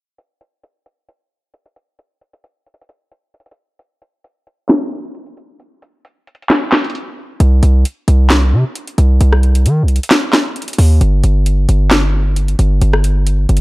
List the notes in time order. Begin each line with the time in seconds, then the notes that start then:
0.18 closed hi-hat
0.41 closed hi-hat
0.63 closed hi-hat
0.86 closed hi-hat
1.09 closed hi-hat
1.54 closed hi-hat
1.66 closed hi-hat
1.76 closed hi-hat
1.99 closed hi-hat
2.21 closed hi-hat
2.33 closed hi-hat
2.44 closed hi-hat
2.66 closed hi-hat
2.74 closed hi-hat
2.81 closed hi-hat
2.89 closed hi-hat
3.12 closed hi-hat
3.34 closed hi-hat
3.40 closed hi-hat
3.46 closed hi-hat
3.51 closed hi-hat
3.79 closed hi-hat
4.02 closed hi-hat
4.24 closed hi-hat
4.47 closed hi-hat
4.69 snare, clap, closed hi-hat
5.15 closed hi-hat
5.26 closed hi-hat
5.37 closed hi-hat
5.60 closed hi-hat
5.82 closed hi-hat
6.05 closed hi-hat
6.27 closed hi-hat
6.35 closed hi-hat
6.42 closed hi-hat
6.49 snare, clap, closed hi-hat
6.72 snare, clap, closed hi-hat
6.78 closed hi-hat
6.84 closed hi-hat
6.90 closed hi-hat
6.95 closed hi-hat
7.40 C2, closed hi-hat
7.63 C2, closed hi-hat
7.85 closed hi-hat
8.08 C2, closed hi-hat
8.30 snare, clap, closed hi-hat
8.53 C3
8.75 closed hi-hat
8.87 closed hi-hat
8.98 C2, closed hi-hat
9.21 C2, closed hi-hat
9.33 cross-stick
9.43 closed hi-hat
9.55 closed hi-hat
9.66 D#3, closed hi-hat
9.83 C2
9.88 closed hi-hat
9.96 closed hi-hat
10.03 closed hi-hat
10.10 snare, clap, closed hi-hat
10.33 snare, clap, closed hi-hat
10.56 closed hi-hat
10.62 closed hi-hat
10.68 closed hi-hat
10.73 closed hi-hat
10.78 D#2, open hi-hat
11.01 G1, closed hi-hat
11.24 G1, closed hi-hat
11.46 closed hi-hat
11.69 G1, closed hi-hat
11.90 snare, clap, closed hi-hat
12.36 closed hi-hat
12.48 closed hi-hat
12.59 G1, closed hi-hat
12.81 G1, closed hi-hat
12.93 cross-stick
13.04 closed hi-hat
13.27 closed hi-hat
13.49 G1, closed hi-hat
13.57 closed hi-hat